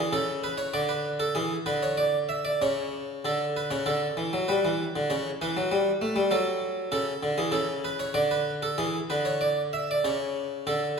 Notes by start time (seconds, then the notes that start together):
Already playing: G#4
0.00 E3
0.13 C#3 A4
0.44 B4
0.58 C#5
0.74 D3 D5
0.89 B4
1.20 A4
1.35 E3 G#4
1.66 D3 B4
1.83 C#5
1.98 D5
2.29 E5
2.45 D5
2.62 C#3 C#5
3.25 D3 A4
3.57 B4
3.71 C#3 C#5
3.86 D3 A4
4.17 E3
4.33 F#3
4.48 G3 B4
4.65 E3
4.96 D3
5.10 C#3 C#5
5.42 E3 B4
5.57 F#3
5.71 G3
6.01 A3
6.16 G3
6.31 F#3 A4
6.92 C#3 A4
7.23 D3
7.38 E3 G#4
7.52 C#3 A4
7.85 B4
8.00 C#5
8.14 D3 D5
8.31 B4
8.62 A4
8.78 E3 G#4
9.10 D3 B4
9.25 C#5
9.41 D5
9.73 E5
9.91 D5
10.04 C#3 C#5
10.67 D3 A4